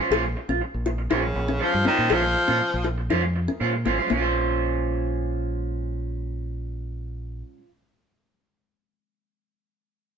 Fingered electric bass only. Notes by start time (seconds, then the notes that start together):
0.11 A#1
0.49 A#1
0.74 A#1
1.11 A#1
1.36 A#1
1.74 G2
1.86 muted fingered electric bass stroke
1.98 A#2
2.10 A#1
2.48 A#2
2.74 A#1
3.11 F2
3.49 muted fingered electric bass stroke
3.61 A#2
3.86 G#1
4.11 A#1